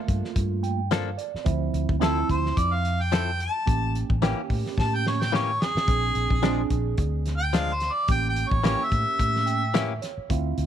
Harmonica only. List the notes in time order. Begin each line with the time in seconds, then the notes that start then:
2.04 A4
2.31 C5
2.58 D5
2.74 F5
3.01 G5
3.42 A5
4.80 A5
4.95 G5
5.08 C#5
5.22 G5
5.35 C#5
5.63 G#4
7.38 G5
7.56 F5
7.74 C5
7.93 D5
8.11 G5
8.29 G5
8.48 C#5
8.67 C#5
8.85 E5